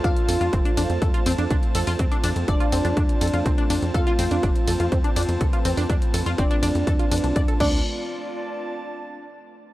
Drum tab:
CC |--------------------------------|--------------------------------|--------------------------------|----------------------------x---|
RD |----x-------x-------x-------x---|----x-------x-------x-------x---|----x-------x-------x-------x---|----x-------x-------x-----------|
HH |x-x-o-x-x-x-o-x-x-x-oxx-x-x-o-o-|x-x-o-x-x-x-o-x-x-x-oxx-x-x-o-x-|x-x-o-x-x-x-o-x-x-x-oxx-x-x-o-o-|x-x-o-x-x-x-o-x-x-x-oxx-x-x-----|
BD |o-------o-------o-------o-------|o-------o-------o-------o-------|o-------o-------o-------o-------|o-------o-------o-------o---o---|

CC |--------------------------------|
RD |--------------------------------|
HH |--------------------------------|
BD |--------------------------------|